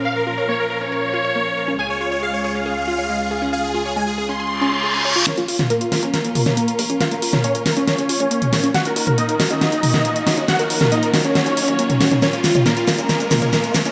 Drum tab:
HH |----------------|----------------|----------------|xxo-xxoxxxoxxxox|
SH |----------------|----------------|----------------|----------------|
SD |----------------|----------------|----------------|o--o--o-o--o----|
T2 |----------------|----------------|----------------|---o------oo----|

HH |xxoxxxoxxxoxxxox|xxoxxxoxxxoxxxox|xxoxxxoxxxoxxxox|xxoxxxoxxxoxxxox|
SH |----------------|----------------|----------------|x-xxxxxxxxxxx-xx|
SD |o--o--o-o-----o-|o-----o-o--o--o-|o--o--o-o-----o-|o-o-o-o-o-o-o-o-|
T2 |---o---------o--|---o------oo----|---o---------o-o|---o------oo----|